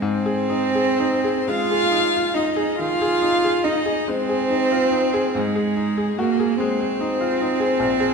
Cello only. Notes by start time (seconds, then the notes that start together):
0.01 C4
1.49 F4
2.34 D#4
2.79 F4
3.64 D#4
4.08 C4
5.37 G#3
6.19 A#3
6.58 C4